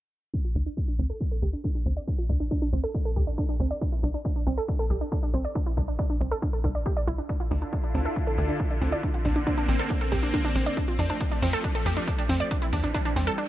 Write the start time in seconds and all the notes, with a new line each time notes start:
0.34 D4, kick
0.45 F4
0.55 D2 D4
0.66 D4
0.77 D4, kick
0.88 D4
0.99 D2 C4
1.10 A4
1.21 D4, kick
1.31 A4
1.42 D2 G4
1.53 D4
1.64 D4, kick
1.75 D4
1.86 D2 C4
1.97 D5
2.08 D4, kick
2.18 F4
2.29 D2 D4, kick
2.40 D4
2.51 D4, kick
2.62 D4
2.73 D2 C4
2.84 A4
2.94 D4, kick
3.05 A4
3.16 D2 G4, kick
3.27 D4
3.38 D4, kick
3.49 D4
3.60 D2 C4
3.71 D5
3.81 D4, kick
3.92 E4
4.03 C2 D4
4.14 D4
4.25 D4, kick
4.36 D4
4.47 C2 C4
4.58 A4
4.68 D4, kick
4.79 A4
4.90 C2 G4
5.01 D4
5.12 D4, kick
5.23 D4
5.34 C2 C4
5.45 D5
5.55 D4, kick
5.66 E4
5.77 C2 D4, kick
5.88 D4
5.99 D4, kick
6.10 D4
6.21 C2 C4
6.31 A4
6.42 D4, kick
6.53 A4
6.64 C2 D4, kick
6.75 D5
6.86 G4, kick
6.97 D5
7.07 C2 E4
7.18 D4
7.29 D3 D4 E4 F4 A4, kick, closed hi-hat
7.40 F4, closed hi-hat
7.51 D2 D4, open hi-hat
7.62 D4, closed hi-hat
7.73 D4, kick, closed hi-hat
7.84 D4, closed hi-hat
7.94 D2 C4, open hi-hat
8.05 A4, closed hi-hat
8.16 D4, kick, closed hi-hat
8.27 A4, closed hi-hat
8.38 D2 G4, open hi-hat
8.49 D4, closed hi-hat
8.60 D4, kick, closed hi-hat
8.71 D4, closed hi-hat
8.81 D2 C4, open hi-hat
8.92 D5, closed hi-hat
9.03 A#3 C4 D4, kick, closed hi-hat
9.14 F4, closed hi-hat
9.25 A#1 D4, kick, open hi-hat
9.36 D4, closed hi-hat
9.47 D4, kick, closed hi-hat
9.58 D4, closed hi-hat
9.68 A#1 C4, open hi-hat
9.79 A4, closed hi-hat
9.90 D4, kick, closed hi-hat
10.01 A4, closed hi-hat
10.12 A#1 G4, kick, open hi-hat
10.23 D4, closed hi-hat
10.34 D4, kick, closed hi-hat
10.45 D4, closed hi-hat
10.55 A#1 C4, open hi-hat
10.66 D5, closed hi-hat
10.77 F3 A3 D4, kick, closed hi-hat
10.88 F4, closed hi-hat
10.99 F2 D4, open hi-hat
11.10 D4, closed hi-hat
11.21 D4, kick, closed hi-hat
11.31 D4, closed hi-hat
11.42 F2 C4, open hi-hat
11.53 A4, closed hi-hat
11.64 D4, kick, closed hi-hat
11.75 A4, closed hi-hat
11.86 F2 G4, open hi-hat
11.97 D4, closed hi-hat
12.08 D4, kick, closed hi-hat
12.18 D4, closed hi-hat
12.29 F2 C4, open hi-hat
12.40 D5, closed hi-hat
12.51 E3 G3 D4, kick, closed hi-hat
12.62 E4, closed hi-hat
12.73 E2 D4, kick, open hi-hat
12.84 D4, closed hi-hat
12.94 D4, kick, closed hi-hat
13.05 D4, closed hi-hat
13.16 E2 C4, open hi-hat
13.27 A4, closed hi-hat
13.38 D4, reverse cymbal